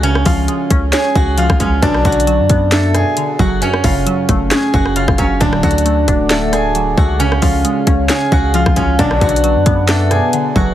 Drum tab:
HH |x-----o-----x-----x-----x-----------x-----x-----|x-----x-x-x-x-----x-----x-----x-----x-----------|x-----o-----x-----x-----x-----------x-----x-----|x-----x-x-x-x-----x-----x-----x-----x-----------|
CP |------------------------x-----------------------|------------------------x-----------------------|------------------------x-----------------------|------------------------x-----------------------|
SD |---r--------------------o--------------r--------|---r--------------------o-----r-----------------|---r--------------------o--------r-----r--------|---r--------------------o-----r-----------------|
BD |------o-----------o-----------o--------o--o-----|o-----o-----------o-----------------------o-----|------o-----------o-----------o--------o--o-----|o-----o-----------o-----------------------o-----|

HH |x-----o-----x-----x-----x-----------x-----x-----|x-----x-x-x-x-----x-----x-----x-----x-----------|
CP |------------------------x-----------------------|------------------------x-----------------------|
SD |---r--------------------o--------------r--------|---r--------------------o-----r-----------------|
BD |------o-----------o-----------o--------o--o-----|o-----o-----------o-----------------------o-----|